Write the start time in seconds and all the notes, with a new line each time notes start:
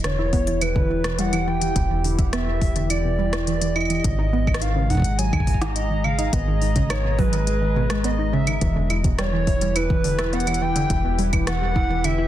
Already playing: E1 E3 E4 G4
0.04 D3 C#5, cross-stick, closed hi-hat
0.19 E4
0.33 B3, kick, open hi-hat
0.47 E3, closed hi-hat
0.61 E3 B4, closed hi-hat, claves
0.76 D3, kick
0.90 E4
1.04 B2, cross-stick, closed hi-hat
1.18 G3 F#5, closed hi-hat
1.33 E3, closed hi-hat, claves
1.47 E3 G5
1.61 E3, closed hi-hat
1.76 E1 E4, kick, closed hi-hat
1.90 E3
2.04 D3, open hi-hat
2.19 E4, kick, closed hi-hat
2.33 B3 E5, cross-stick, closed hi-hat
2.47 E3
2.61 E3, kick, open hi-hat
2.76 D3, closed hi-hat
2.90 E4 D5, closed hi-hat, claves
3.04 B2
3.19 G3
3.33 E3, cross-stick, closed hi-hat
3.47 E3 D5, closed hi-hat
3.61 E3, closed hi-hat
3.75 E4 D#5, claves
3.81 claves
3.85 claves
3.90 E3, closed hi-hat, claves
3.95 claves
4.00 claves
4.04 G#1 C#3 G#3, kick, closed hi-hat
4.19 D#4
4.30 B3 G#4
4.47 D#3, kick, claves
4.54 cross-stick, closed hi-hat
4.61 D#3 F5, closed hi-hat
4.76 C#3
4.83 A#5
4.90 D#4 F#5, kick, open hi-hat
4.92 kick
4.95 kick
4.97 kick
5.00 kick
5.02 B2, kick, closed hi-hat
5.18 F#3 G#5, closed hi-hat
5.33 D#3, kick, claves
5.40 kick
5.47 D#3, kick, open hi-hat
5.54 D#5, kick
5.61 D#3, cross-stick, closed hi-hat
5.76 D#4 D#5, closed hi-hat
5.90 D#3
6.04 C#3 F5, claves
6.19 D#4, closed hi-hat
6.33 G#1 B3 D#5, kick, closed hi-hat
6.47 D#3
6.61 D#3, open hi-hat
6.76 C#3, kick, closed hi-hat
6.90 D#4 C#5, cross-stick, closed hi-hat, claves
7.04 B2
7.18 F#3 B4, kick, open hi-hat
7.33 D#3, closed hi-hat
7.47 D#3, closed hi-hat
7.62 D#3
7.76 B2
7.90 G#3, cross-stick, closed hi-hat
8.04 B3 D#5, closed hi-hat
8.19 D#4
8.33 C#3 E5
8.47 D#3, closed hi-hat, claves
8.61 E1 E3, kick, closed hi-hat
8.73 D3 E4
8.80 G4
8.90 E4, closed hi-hat, claves
9.04 B2, kick, closed hi-hat
9.19 G3 C#5, cross-stick, closed hi-hat
9.33 E3
9.38 B4
9.47 E3, kick, open hi-hat
9.61 G3, closed hi-hat
9.76 E4 B4, closed hi-hat, claves
9.90 E3, kick
10.04 D3, open hi-hat
10.19 E4, cross-stick, closed hi-hat
10.33 B3 F#5, closed hi-hat
10.40 closed hi-hat
10.47 E3, closed hi-hat, claves
10.54 closed hi-hat
10.61 E3 G5
10.76 D3, closed hi-hat
10.90 E1 E4, kick, closed hi-hat
11.04 B2
11.18 G3, open hi-hat
11.33 E3, kick, closed hi-hat, claves
11.47 E3 F#5, cross-stick, closed hi-hat
11.61 G3
11.76 E4, kick
11.90 E3
12.04 D3 E5, closed hi-hat, claves
12.18 E4